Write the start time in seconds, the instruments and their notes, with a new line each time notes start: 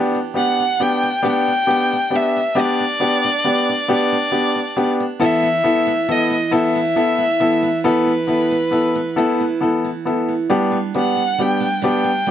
Already playing: grand piano B3 D4 G4, steel-string acoustic guitar B3 G4
0.15 steel-string acoustic guitar D4
0.34 grand piano B3 D4 G4, steel-string acoustic guitar B3, violin F#5
0.59 steel-string acoustic guitar D4
0.80 grand piano B3 D4 G4, steel-string acoustic guitar B3, violin G5
1.03 steel-string acoustic guitar D4
1.22 grand piano B3 D4 G4, steel-string acoustic guitar B3 G4
1.27 violin G5
1.48 steel-string acoustic guitar D4
1.67 grand piano B3 D4 G4, steel-string acoustic guitar B3
1.93 steel-string acoustic guitar D4
2.10 grand piano B3 D4 G4, steel-string acoustic guitar B3
2.15 violin E5
2.37 steel-string acoustic guitar D4
2.55 grand piano B3 D4 G4, steel-string acoustic guitar B3 G4
2.60 violin D5
2.80 steel-string acoustic guitar D4
3.00 grand piano B3 D4 G4, steel-string acoustic guitar B3
3.25 steel-string acoustic guitar D4
3.44 grand piano B3 D4 G4, steel-string acoustic guitar B3
3.69 steel-string acoustic guitar D4
3.88 grand piano B3 D4 G4, steel-string acoustic guitar B3 G4
3.93 violin D5
4.12 steel-string acoustic guitar D4
4.32 grand piano B3 D4 G4, steel-string acoustic guitar B3
4.56 steel-string acoustic guitar D4
4.77 grand piano B3 D4 G4, steel-string acoustic guitar B3
5.00 steel-string acoustic guitar D4
5.20 steel-string acoustic guitar E3 E4, grand piano B3 E4 A4, violin E5
5.43 steel-string acoustic guitar B3
5.64 steel-string acoustic guitar E3, grand piano B3 E4 A4
5.87 steel-string acoustic guitar B3
6.08 steel-string acoustic guitar E3, grand piano B3 E4 A4, violin D#5
6.30 steel-string acoustic guitar B3
6.51 steel-string acoustic guitar E3 E4, grand piano B3 E4 A4, violin E5
6.75 steel-string acoustic guitar B3
6.96 steel-string acoustic guitar E3, grand piano B3 E4 A4
7.18 steel-string acoustic guitar B3
7.40 steel-string acoustic guitar E3, grand piano B3 E4 A4
7.63 steel-string acoustic guitar B3
7.84 steel-string acoustic guitar E3 E4, grand piano B3 E4 A4, violin B4
8.06 steel-string acoustic guitar B3
8.27 steel-string acoustic guitar E3, grand piano B3 E4 A4
8.51 steel-string acoustic guitar B3
8.71 steel-string acoustic guitar E3, grand piano B3 E4 A4
8.96 steel-string acoustic guitar B3
9.16 steel-string acoustic guitar E3 E4, grand piano B3 E4 A4
9.40 steel-string acoustic guitar B3
9.61 steel-string acoustic guitar E3, grand piano B3 E4 A4
9.84 steel-string acoustic guitar B3
10.05 steel-string acoustic guitar E3, grand piano B3 E4 A4
10.29 steel-string acoustic guitar B3
10.50 steel-string acoustic guitar G3 D4, grand piano B3 D4 G4
10.72 steel-string acoustic guitar B3
10.94 steel-string acoustic guitar G3, grand piano B3 D4 G4, violin F#5
11.16 steel-string acoustic guitar B3
11.38 steel-string acoustic guitar G3, grand piano B3 D4 G4, violin G5
11.60 steel-string acoustic guitar B3
11.82 steel-string acoustic guitar G3 D4, grand piano B3 D4 G4
11.87 violin G5
12.04 steel-string acoustic guitar B3
12.27 steel-string acoustic guitar G3, grand piano B3